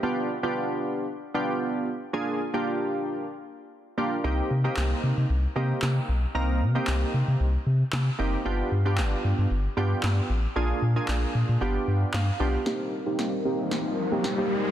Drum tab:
CP |--------|--------|--x---x-|--x---x-|
SD |--------|--------|--o---o-|--o---o-|

CP |--x---x-|--x---x-|--------|
SD |--o---o-|--o---o-|o-o-o-o-|